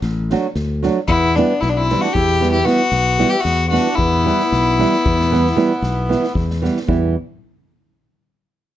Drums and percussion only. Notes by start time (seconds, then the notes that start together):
0.02 snare
0.30 snare
0.55 snare
0.83 snare
1.08 kick
1.36 snare
1.62 snare
1.89 snare
2.02 snare
2.15 kick
2.43 snare
2.67 snare
2.91 snare
3.20 snare
3.46 snare
3.75 snare
3.99 kick
4.27 snare
4.40 snare
4.53 snare
4.82 snare
4.94 snare
5.06 kick
5.21 snare
5.34 snare
5.47 snare
5.59 snare
5.83 snare
6.12 snare
6.24 snare
6.35 kick, snare
6.51 snare
6.65 snare
6.77 snare
6.89 kick